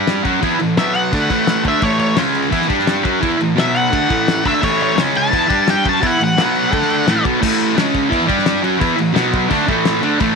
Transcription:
Already playing: G3 D4 G4
0.07 snare, crash
0.24 F#3 C#4 F#4, kick, crash
0.41 E3 B3 E4, kick, crash
0.59 A2 E3, crash
0.77 B2 F#3 B3 E5, snare, crash
0.95 F#5, crash
1.12 D3 A3 D4, kick, crash
1.30 A2 E3 A3, kick, crash
1.47 snare, crash
1.64 D3 A3 D4, kick, crash
1.68 E5
1.81 A2 E3 A3 C#5, kick, crash
1.99 C#5, crash
2.16 C#3 G#3 C#4, snare, crash
2.35 crash
2.50 E3 B3 E4, kick, crash
2.62 snare
2.68 G3 D4 G4, kick, crash
2.79 snare
2.87 snare, crash
3.03 F#3 C#4 F#4, kick, crash
3.21 E3 B3 E4, kick, crash
3.39 A2 E3, crash
3.56 B2 F#3 B3 E5, snare, crash
3.76 F#5, crash
3.91 D3 A3 D4, kick, crash
4.09 A2 E3 A3, kick, crash
4.28 snare, crash
4.44 D3 A3 D4 E5, kick, crash
4.61 A2 E3 A3 C#5, kick, crash
4.81 C#5, crash
4.96 C#3 G#3 C#4, snare, crash
5.15 A5, crash
5.30 E3 B3 E4, kick, crash
5.48 G3 D4 G4, kick, crash
5.67 G5, snare, crash
5.84 F#3 C#4 F#4, kick, crash
5.89 A5
6.01 E3 B3 E4, kick, crash
6.06 F#5
6.18 A2 E3, crash
6.24 F#5
6.37 B2 F#3 B3, snare, crash
6.56 crash
6.72 D3 A3 D4, kick, crash
6.82 snare
6.90 crash
7.06 A2 E3 A3, snare, crash
7.24 B2 F#3 B3, kick, crash
7.40 A2 E3 A3, kick, crash
7.61 crash
7.76 C#3 G#3 C#4, snare, crash
7.94 kick, crash
8.10 E3 B3 E4, kick, crash
8.26 G3 D4 G4, kick, crash
8.39 snare
8.46 snare, crash
8.63 F#3 C#4 F#4, crash
8.79 E3 B3 E4, kick, crash
8.97 A2 E3, crash
9.13 B2 F#3 B3, snare, crash
9.33 kick, crash
9.49 D3 A3 D4, kick, crash
9.67 A2 E3 A3, kick, crash
9.85 snare, crash
10.01 D3 A3 D4, crash
10.19 A2 E3 A3, kick, crash

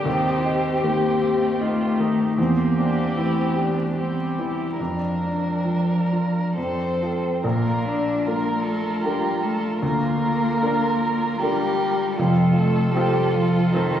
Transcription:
Already playing: G4
0.05 D#2 C4 D#4
0.44 D#4 G4
0.83 D#3 A#3
1.22 G4
1.61 A3 D#4 F4
1.99 D#3 D#4
2.38 E2 A#3 C4 G4
2.78 C4 D4
3.17 E3 A3 E4
3.56 D4 G4
3.96 G3 C4 G4
4.38 E3 E4
4.79 F2 F3 D4 A#4
5.24 D4
5.65 F3
6.12 F4
6.56 F2 C4 A4 C5
7.02 F4 A4
7.44 A#1 A#2 A#3 F4 A#4
7.85 D4 D5
8.25 A#3 D4 F4 A#4
8.62 A3 A4
9.02 G3 D4 F4 G4 A#4
9.42 A3 A4
9.80 D2 D3 A#3 F4 A#4
10.62 D4 F4 A#4
11.39 G3 D4 F4 G4 A#4
12.17 F1 F2 F3 F4 A4
12.55 A3 A4
12.92 G3 C4 F4 G4 A4
13.32 F3 F4
13.72 D#3 C4 D#4 F4 A4

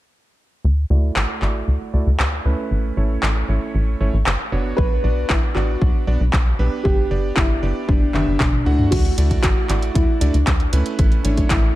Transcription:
0.65 D2
0.90 D2 A3 E4 F#4 D5
1.16 A1, clap
1.42 A1 A3 E4 F#4 D5, clap
1.68 D2
1.94 D2 A3 E4 F#4 D5
2.07 D2
2.20 D2, clap
2.45 D2 A3 C#4 E4 B4
2.71 A1
2.97 A1 A3 C#4 E4 C#5
3.23 A1, clap
3.49 A1 A3 C#4 E4 C#5
3.75 A1
4.00 A1 A3 C#4 E4 C#5
4.14 A1
4.26 G1, clap
4.52 G1 B3 D4 F#4 C#5
4.77 B1 B4, kick
5.04 B1 B3 D4 F#4 D5
5.29 A1 E4, kick, clap
5.55 A1 B3 D4 F#4 D5, clap
5.82 B1, kick
6.07 B1 B3 D4 F#4 D5
6.21 B1
6.33 B1, kick, clap
6.59 B1 B3 D4 G4 B4
6.83 G1 G4, kick
7.11 G1 B3 D4 G4 D5
7.36 G1 E4, kick, clap
7.63 G1 B3 D4 G4 D5
7.87 G1 D4, kick
8.13 G1 B3 D4 G4 E5, clap, high tom
8.27 G1
8.40 G1, kick, clap, mid tom
8.53 mid tom
8.65 D2 A3 D4 E4 F#4 F#5
8.79 mid tom
8.91 D2 F#4, kick, closed hi-hat, crash
9.05 closed hi-hat
9.18 D2 A3 E4 F#4 D5, closed hi-hat
9.31 kick, closed hi-hat
9.43 A1 F#4, kick, clap, closed hi-hat
9.69 A1 A3 E4 F#4 D5, clap, closed hi-hat
9.83 closed hi-hat
9.94 D2 E4, kick, closed hi-hat
10.20 D2 A3 D4 E4 F#4 D5, closed hi-hat
10.34 D2, closed hi-hat
10.47 D2, kick, clap, closed hi-hat
10.60 closed hi-hat
10.73 D2 A3 C#4 E4 B4, closed hi-hat
10.86 closed hi-hat
10.99 A1, kick, closed hi-hat
11.12 closed hi-hat
11.23 A1 A3 C#4 D4 E4 C#5, closed hi-hat
11.37 kick, closed hi-hat
11.49 A1 E4, kick, clap, closed hi-hat

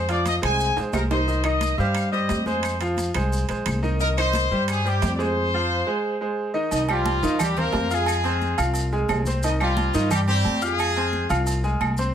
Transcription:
Already playing: F2
0.09 F3 F4 D5 F5, high conga, high timbale, maracas
0.26 D#5, high conga, high timbale, maracas
0.42 C2 G#3 G#4 C5 G#5, high conga, high timbale, claves, maracas
0.60 high conga, maracas
0.77 G#3 G#4 C5, high conga, high timbale, maracas
0.93 C2 A#4, high conga, low timbale, claves, maracas
1.11 D#3 D#4 C5 D#5, high conga, low timbale, maracas
1.27 D#3 D#4 D#5, high conga, maracas
1.44 D#3 D#4 D#5, high conga, high timbale, claves, maracas
1.61 high conga, high timbale, maracas
1.78 G2 G3 G4 C5 F5, high conga, maracas
1.95 high conga, high timbale, claves, maracas
2.12 G3 G4 C5 D#5, high conga, maracas
2.29 F2, high conga, high timbale, low timbale, maracas
2.46 G#3 G#4 C5, high conga, maracas
2.63 high conga, high timbale, claves, maracas
2.80 F3 F4 F5, high conga, high timbale, maracas
2.97 high conga, high timbale, maracas
3.14 C2 G#3 G#4 C5, high conga, high timbale, claves, maracas
3.33 high conga, maracas
3.49 A#1 G#3 G#4 C5, high conga, high timbale, maracas
3.66 C2, high conga, high timbale, claves, maracas
3.83 D#3 D#4 D#5, maracas
4.00 D#3 D#4 A#4 D#5, high conga, maracas
4.17 D#3 D#4 C5 D#5, high conga, high timbale, claves, maracas
4.33 high conga, high timbale, maracas
4.50 G2 G3 G4 C5, high conga, maracas
4.68 G#4, high conga, high timbale, claves, maracas
4.85 G3 G4 C5, high conga, maracas
5.02 F2, high conga, high timbale, low timbale, maracas
5.15 G#3 D5
5.19 G#4 C5, maracas
5.54 F3 F4 F5
5.87 G#3 G#4 C5
6.21 G#3 G#4 C5
6.54 D#3 D#4 D#5
6.71 C2 D#3 D#4 D#5, high conga, low agogo, maracas
6.89 F3 G3 F4 G4 G5, high conga, low agogo, claves, maracas
7.06 high conga, low agogo, maracas
7.23 D#2 D#3 D#4 D#5, high conga, maracas
7.39 G3 G4 G5, high conga, low conga, low agogo, claves, maracas
7.57 A#3 C4 A#4 C5 C6, high conga, low conga, low agogo, maracas
7.73 F2, high conga, low timbale, low agogo, maracas
7.91 G#3 F4 G#4 F5 F6, high conga, maracas
8.06 high conga, low agogo, claves, maracas
8.24 C4 C5 C6, high conga, low agogo, maracas
8.42 high conga, maracas
8.58 C2 F4 F5 F6, high conga, low agogo, claves, maracas
8.74 high conga, low agogo, maracas
8.92 G#3 G#4 G#5, high conga, maracas
9.09 C2, high conga, low timbale, low agogo, claves, maracas
9.25 C4 C5 C6, high conga, maracas
9.43 D#3 D#4 D#5, low agogo, maracas
9.60 F3 G3 F4 G4 G5, high conga, low agogo, claves, maracas
9.77 high conga, low agogo, maracas
9.94 G2 D#3 D#4 D#5, high conga, maracas
10.10 G3 G4 G5, high conga, low conga, low agogo, claves, maracas
10.27 G3 C4 G4 C5 C6, low agogo, maracas
10.45 F2, high conga, low agogo, maracas
10.61 G#3 F4 G#4 F5 F6, high conga, maracas
10.79 high conga, low agogo, claves, maracas
10.96 C4 C5 C6, high conga, low agogo, maracas
11.13 high conga, maracas
11.29 C2 F4 F5 F6, high conga, low agogo, claves, maracas
11.47 high conga, low agogo, maracas
11.64 G#3 G#4 G#5, high conga, maracas
11.81 C2, high conga, low agogo, claves, maracas
11.97 C4 C5 C6, maracas

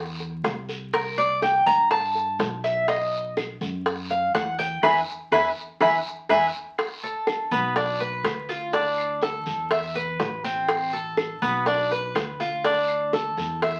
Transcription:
Already playing: E2
0.20 high bongo
0.44 C2, high bongo, low bongo, short guiro, claves
0.69 high bongo, short guiro
0.93 A#4, high bongo, long guiro
1.18 D5, claves
1.42 G5, high bongo, short guiro
1.66 G2 A#5, high bongo, short guiro
1.91 A5, high bongo, long guiro, claves
2.15 high bongo
2.39 B1, high bongo, low bongo, short guiro
2.64 E5, high bongo, short guiro
2.88 D#5, high bongo, long guiro, claves
3.37 high bongo, short guiro, claves
3.61 F#2, high bongo, short guiro
3.86 high bongo, long guiro
4.10 F5, high bongo
4.34 E2 F#5, high bongo, low bongo, short guiro, claves
4.59 G5, high bongo, short guiro
4.83 E2 B4 E5 G#5, high bongo, long guiro, claves
5.32 E2 B4 E5 G#5, high bongo, long guiro, claves
5.80 E2 B4 E5 G#5, high bongo, long guiro, claves
6.29 E2 B4 E5 G#5, high bongo, long guiro, claves
6.78 high bongo, long guiro, claves
7.03 A4
7.27 high bongo, short guiro, claves
7.51 B1 B3, high bongo, short guiro
7.76 D4, high bongo, long guiro
8.00 B4, high bongo
8.24 D2, high bongo, low bongo, short guiro, claves
8.49 F4, high bongo, short guiro
8.73 D4, high bongo, long guiro
8.98 claves
9.22 A4, high bongo, short guiro
9.46 E2, high bongo, short guiro
9.71 E5, high bongo, long guiro, claves
9.95 B4, high bongo
10.19 A1, high bongo, low bongo, short guiro
10.44 C4, high bongo, short guiro
10.69 high bongo, long guiro, claves
10.93 A4
11.17 high bongo, short guiro, claves
11.42 B1 B3, high bongo, short guiro
11.66 D4, high bongo, long guiro
11.91 B4, high bongo
12.15 D2, high bongo, low bongo, short guiro, claves
12.40 F4, high bongo, short guiro
12.64 D4, high bongo, long guiro
12.88 claves
13.13 A4, high bongo, short guiro
13.37 E2, high bongo, short guiro
13.62 E5, high bongo, long guiro, claves

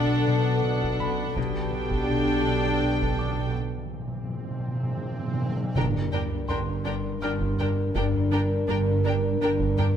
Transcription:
Already playing: B1 B2 D4 A4 F#5
0.27 B2
0.64 B2
0.82 taiko
1.00 B2 B5
1.36 B1 B2 D4 G4 A4 G5, taiko
1.60 B2
1.67 B2
1.74 B2
1.81 B2
1.90 B2, taiko
2.05 B2
2.11 B2
2.28 B2
2.36 B2
2.43 B2
2.50 B2
2.59 B2
2.66 B2
2.72 B2
2.80 B2
2.88 B2
2.94 B2
3.01 B2, taiko
3.10 B2
3.17 B2 D6
3.25 B2
3.32 B2
3.39 B2
3.48 B2
3.55 B2, swell
3.63 B2
3.70 B2
3.78 B2
3.85 B2
3.93 B2
3.99 B2
4.07 B2
4.15 B2
4.23 B2
4.30 B2
4.36 B2
4.45 B2
4.51 B2
4.60 B2
4.68 B2
4.75 B2
4.83 B2
4.91 B2
4.97 B2
5.05 B2
5.12 B2
5.19 B2
5.27 B2
5.34 B2
5.42 B2
5.49 B2
5.56 B2
5.64 B2
5.75 G1 G2 D4 A#4 G5, taiko, sub drop
5.94 taiko low-mid
6.12 G3 D4 A#4 G5
6.48 G1 G2 G3 D4 A#4 G5 C6, taiko low-mid
6.85 G2 D4 A#4 G5
7.21 G1 G2 G3 D4 A#4 G5 F6
7.40 taiko
7.58 G2 D4 A#4 G5, taiko low-mid
7.94 G1 G2 D4 A#4 G5, taiko
8.14 taiko low-mid
8.31 G3 D4 A#4 G5
8.67 G1 G2 G3 D4 A#4 G5, taiko low-mid
9.04 G2 D4 A#4 G5
9.41 G1 G2 G3 D4 A#4 G5
9.59 taiko
9.77 G2 D4 A#4 G5, taiko low-mid

